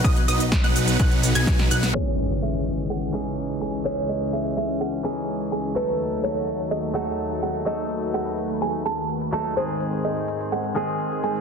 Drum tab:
CC |----------------|x---------------|----------------|----------------|
HH |xxoxxxoxxxoxxxox|x-xxxxxxxxx-xxxx|xxxxxxxxxxxxxxxx|xxxxxxxxxxxxxxxx|
SH |x-xxx-xxx-xxx-xx|---xx-xxx-xxx-xx|x-xxx-xxx-xxx-xx|x-xxx-xxx-xxx-xx|
SD |----oo------oo-o|----------------|----------------|----------------|
BD |o---o---o---o---|----------------|----------------|----------------|

CC |----------------|----------------|
HH |xxxxxxxxxxxxxxxx|xxxxxxxxxxxxxxxx|
SH |x-xxx-xxx-xxx-xx|x-xxx-xxx-xxx-xx|
SD |----------------|----------------|
BD |----------------|----------------|